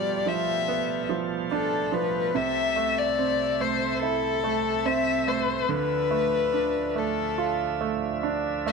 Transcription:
0.00 2.31 B2 soft
0.00 2.32 B2 soft
0.00 0.25 F3 soft
0.00 1.47 G3 soft
0.00 2.31 G3 soft
0.00 5.66 A3 soft
0.00 2.32 F4 medium
0.00 0.29 D5 medium
0.26 1.08 F3 soft
0.26 1.10 E5 medium
0.68 2.31 B3 soft
1.09 1.91 F3 soft
1.51 2.32 D4 soft
1.51 1.95 A4 medium
1.92 2.33 F3 soft
1.92 2.38 B4 medium
2.35 5.66 C2 medium
2.35 5.65 C3 medium
2.35 5.66 C3 soft
2.35 8.72 E5 medium
2.35 3.00 E5 medium
2.76 3.59 A3 soft
2.98 3.62 D5 medium
3.18 4.82 C4 soft
3.61 4.42 A3 soft
3.61 4.02 C5 medium
4.03 5.66 E4 soft
4.03 4.87 A4 medium
4.44 5.26 A3 soft
4.85 5.67 C4 soft
4.85 5.29 E5 medium
5.27 5.68 A3 soft
5.27 5.71 C5 medium
5.69 8.72 D2 soft
5.69 8.72 D3 soft
5.69 8.72 F3 soft
5.69 6.99 B4 medium
6.11 6.94 A3 soft
6.53 8.19 D4 soft
6.95 7.79 A3 soft
6.95 7.82 A4 medium
7.38 8.72 F4 soft
7.81 8.65 A3 soft
8.23 8.72 D4 soft
8.66 8.72 A3 soft
8.66 8.72 E5 medium

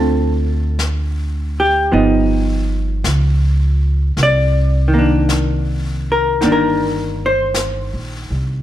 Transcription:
0.00 1.89 D2 medium
0.00 1.92 D3 soft
0.00 1.91 A3 medium
0.00 1.92 C4 medium
0.00 1.93 F4 soft
0.00 0.77 A4 medium
0.79 brush sweep soft
0.79 snare soft
0.79 hi-hat pedal soft
1.60 2.65 G4 medium
1.92 3.01 G1 medium
1.92 4.17 F3 soft
1.92 4.17 B3 soft
1.92 4.18 D#4 soft
1.92 brush sweep soft
3.04 4.13 C#2 medium
3.04 brush sweep soft
3.04 snare soft
3.04 hi-hat pedal medium
4.17 6.38 C2 medium
4.17 brush sweep soft
4.17 snare soft
4.23 5.29 D5 medium
4.88 6.40 D#3 soft
4.94 6.42 A#3 soft
4.99 6.43 D4 soft
5.29 brush sweep soft
5.29 snare soft
5.29 hi-hat pedal soft
6.12 6.48 A#4 medium
6.41 7.90 G1 medium
6.41 8.62 D#3 soft
6.41 8.62 A#3 soft
6.41 8.62 D4 soft
6.41 brush sweep soft
6.41 snare soft
6.52 7.24 A#4 medium
7.26 8.62 C5 medium
7.54 brush sweep soft
7.54 snare soft
7.54 hi-hat pedal medium
7.93 8.29 A#1 soft
8.30 8.62 C2 medium

